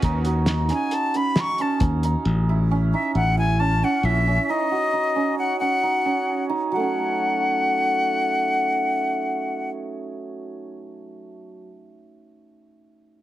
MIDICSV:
0, 0, Header, 1, 5, 480
1, 0, Start_track
1, 0, Tempo, 444774
1, 32, Time_signature, 5, 2, 24, 8
1, 14272, End_track
2, 0, Start_track
2, 0, Title_t, "Flute"
2, 0, Program_c, 0, 73
2, 791, Note_on_c, 0, 80, 75
2, 1010, Note_on_c, 0, 81, 86
2, 1027, Note_off_c, 0, 80, 0
2, 1255, Note_on_c, 0, 83, 92
2, 1272, Note_off_c, 0, 81, 0
2, 1514, Note_on_c, 0, 85, 105
2, 1530, Note_off_c, 0, 83, 0
2, 1741, Note_on_c, 0, 81, 83
2, 1757, Note_off_c, 0, 85, 0
2, 1969, Note_off_c, 0, 81, 0
2, 3166, Note_on_c, 0, 76, 84
2, 3386, Note_off_c, 0, 76, 0
2, 3404, Note_on_c, 0, 78, 88
2, 3625, Note_off_c, 0, 78, 0
2, 3647, Note_on_c, 0, 80, 99
2, 3879, Note_on_c, 0, 81, 102
2, 3895, Note_off_c, 0, 80, 0
2, 4143, Note_on_c, 0, 78, 89
2, 4159, Note_off_c, 0, 81, 0
2, 4370, Note_on_c, 0, 76, 90
2, 4386, Note_off_c, 0, 78, 0
2, 4860, Note_on_c, 0, 75, 92
2, 4876, Note_off_c, 0, 76, 0
2, 5802, Note_off_c, 0, 75, 0
2, 5808, Note_on_c, 0, 78, 83
2, 6028, Note_off_c, 0, 78, 0
2, 6036, Note_on_c, 0, 78, 80
2, 6956, Note_off_c, 0, 78, 0
2, 7248, Note_on_c, 0, 78, 82
2, 10464, Note_off_c, 0, 78, 0
2, 14272, End_track
3, 0, Start_track
3, 0, Title_t, "Hammered dulcimer"
3, 0, Program_c, 1, 15
3, 0, Note_on_c, 1, 61, 74
3, 0, Note_on_c, 1, 66, 79
3, 44, Note_on_c, 1, 63, 82
3, 273, Note_off_c, 1, 66, 0
3, 277, Note_on_c, 1, 66, 71
3, 518, Note_off_c, 1, 63, 0
3, 523, Note_on_c, 1, 63, 74
3, 752, Note_off_c, 1, 61, 0
3, 756, Note_on_c, 1, 61, 68
3, 1240, Note_off_c, 1, 61, 0
3, 1244, Note_on_c, 1, 61, 69
3, 1483, Note_off_c, 1, 63, 0
3, 1487, Note_on_c, 1, 63, 81
3, 1719, Note_off_c, 1, 61, 0
3, 1723, Note_on_c, 1, 61, 78
3, 2200, Note_off_c, 1, 63, 0
3, 2205, Note_on_c, 1, 63, 74
3, 2690, Note_on_c, 1, 64, 72
3, 2754, Note_off_c, 1, 63, 0
3, 2924, Note_off_c, 1, 61, 0
3, 2928, Note_on_c, 1, 61, 77
3, 3170, Note_on_c, 1, 63, 68
3, 3235, Note_off_c, 1, 64, 0
3, 3400, Note_on_c, 1, 64, 73
3, 3465, Note_off_c, 1, 63, 0
3, 3637, Note_off_c, 1, 64, 0
3, 3641, Note_on_c, 1, 64, 71
3, 3783, Note_off_c, 1, 66, 0
3, 3879, Note_off_c, 1, 61, 0
3, 3883, Note_on_c, 1, 61, 84
3, 4124, Note_off_c, 1, 61, 0
3, 4129, Note_on_c, 1, 61, 75
3, 4360, Note_off_c, 1, 64, 0
3, 4365, Note_on_c, 1, 64, 74
3, 4608, Note_off_c, 1, 61, 0
3, 4612, Note_on_c, 1, 61, 72
3, 4848, Note_on_c, 1, 63, 81
3, 4913, Note_off_c, 1, 64, 0
3, 5090, Note_on_c, 1, 66, 65
3, 5317, Note_off_c, 1, 63, 0
3, 5322, Note_on_c, 1, 63, 73
3, 5563, Note_off_c, 1, 61, 0
3, 5567, Note_on_c, 1, 61, 72
3, 6049, Note_off_c, 1, 61, 0
3, 6054, Note_on_c, 1, 61, 67
3, 6288, Note_off_c, 1, 63, 0
3, 6292, Note_on_c, 1, 63, 76
3, 6528, Note_off_c, 1, 61, 0
3, 6533, Note_on_c, 1, 61, 66
3, 7005, Note_off_c, 1, 63, 0
3, 7010, Note_on_c, 1, 63, 72
3, 7248, Note_on_c, 1, 54, 63
3, 7291, Note_on_c, 1, 57, 60
3, 7331, Note_off_c, 1, 61, 0
3, 7336, Note_on_c, 1, 61, 60
3, 7371, Note_off_c, 1, 66, 0
3, 7376, Note_on_c, 1, 66, 59
3, 10900, Note_off_c, 1, 63, 0
3, 11283, Note_off_c, 1, 66, 0
3, 11505, Note_off_c, 1, 61, 0
3, 12081, Note_off_c, 1, 57, 0
3, 12563, Note_off_c, 1, 54, 0
3, 14272, End_track
4, 0, Start_track
4, 0, Title_t, "Fingered electric bass"
4, 0, Program_c, 2, 33
4, 31, Note_on_c, 2, 39, 99
4, 755, Note_off_c, 2, 39, 0
4, 1950, Note_on_c, 2, 39, 82
4, 2314, Note_off_c, 2, 39, 0
4, 2432, Note_on_c, 2, 33, 110
4, 3157, Note_off_c, 2, 33, 0
4, 3399, Note_on_c, 2, 33, 86
4, 4122, Note_off_c, 2, 33, 0
4, 4352, Note_on_c, 2, 34, 88
4, 4716, Note_off_c, 2, 34, 0
4, 14272, End_track
5, 0, Start_track
5, 0, Title_t, "Drums"
5, 26, Note_on_c, 9, 42, 75
5, 28, Note_on_c, 9, 36, 90
5, 134, Note_off_c, 9, 42, 0
5, 136, Note_off_c, 9, 36, 0
5, 267, Note_on_c, 9, 42, 55
5, 374, Note_off_c, 9, 42, 0
5, 499, Note_on_c, 9, 38, 100
5, 499, Note_on_c, 9, 42, 74
5, 607, Note_off_c, 9, 38, 0
5, 607, Note_off_c, 9, 42, 0
5, 744, Note_on_c, 9, 38, 30
5, 744, Note_on_c, 9, 42, 52
5, 852, Note_off_c, 9, 38, 0
5, 852, Note_off_c, 9, 42, 0
5, 985, Note_on_c, 9, 42, 74
5, 1093, Note_off_c, 9, 42, 0
5, 1232, Note_on_c, 9, 42, 51
5, 1340, Note_off_c, 9, 42, 0
5, 1464, Note_on_c, 9, 38, 103
5, 1464, Note_on_c, 9, 42, 76
5, 1572, Note_off_c, 9, 38, 0
5, 1572, Note_off_c, 9, 42, 0
5, 1706, Note_on_c, 9, 42, 55
5, 1814, Note_off_c, 9, 42, 0
5, 1945, Note_on_c, 9, 42, 77
5, 1950, Note_on_c, 9, 36, 99
5, 2053, Note_off_c, 9, 42, 0
5, 2058, Note_off_c, 9, 36, 0
5, 2192, Note_on_c, 9, 42, 59
5, 2300, Note_off_c, 9, 42, 0
5, 14272, End_track
0, 0, End_of_file